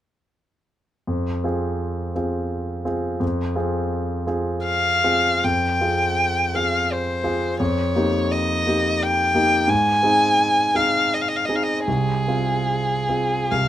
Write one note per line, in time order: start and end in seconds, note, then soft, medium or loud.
1.07 1.43 F2 soft
1.44 2.12 C4 soft
1.44 2.12 F4 soft
1.44 2.12 G#4 soft
2.15 2.82 C4 soft
2.15 2.83 F4 soft
2.15 2.83 G#4 soft
2.85 3.18 C4 soft
2.85 3.18 F4 soft
2.85 3.18 G#4 soft
3.20 3.55 F2 soft
3.56 4.24 C4 soft
3.56 4.24 F4 soft
3.56 4.24 G#4 soft
4.27 5.00 C4 soft
4.27 5.00 F4 soft
4.27 5.00 G#4 soft
4.65 5.46 F5 soft
5.04 5.39 C4 soft
5.04 5.39 F4 soft
5.04 5.40 G#4 soft
5.44 5.80 F2 soft
5.44 6.56 G5 soft
5.81 6.51 C4 soft
5.81 6.51 F4 soft
5.81 6.52 G#4 soft
6.54 7.21 C4 soft
6.54 7.21 F4 soft
6.54 7.21 G#4 soft
6.54 6.94 F5 soft
6.92 7.61 C5 soft
7.24 7.56 C4 soft
7.24 7.56 F4 soft
7.24 7.56 G#4 soft
7.60 7.94 F2 soft
7.60 8.33 C#5 soft
7.96 8.63 A#3 soft
7.96 8.63 D#4 soft
7.96 8.63 G4 soft
8.32 9.04 D#5 soft
8.66 9.30 A#3 soft
8.66 9.30 D#4 soft
8.66 9.30 G4 soft
9.03 9.71 G5 medium
9.34 9.65 A#3 soft
9.34 9.65 D#4 soft
9.34 9.65 G4 soft
9.68 10.01 G#2 soft
9.68 10.77 G#5 medium
10.03 10.71 C4 soft
10.03 10.71 D#4 soft
10.03 10.71 G#4 soft
10.75 11.45 C4 soft
10.75 11.45 D#4 soft
10.75 11.45 G#4 soft
10.75 11.15 F5 medium
11.14 11.23 D#5 soft
11.21 11.30 F5 soft
11.28 11.38 D#5 soft
11.36 11.47 F5 soft
11.45 11.83 C4 soft
11.45 11.83 D#4 soft
11.45 11.57 D#5 soft
11.49 11.84 G#4 soft
11.56 11.65 F5 soft
11.63 11.87 D#5 soft
11.87 12.25 C2 soft
11.87 13.52 G#4 soft
12.28 13.05 C4 soft
12.28 13.05 F4 soft
12.28 13.05 G#4 soft
13.09 13.47 C4 soft
13.09 13.47 F4 soft
13.09 13.47 G#4 soft
13.51 13.68 C2 soft
13.51 13.68 F5 soft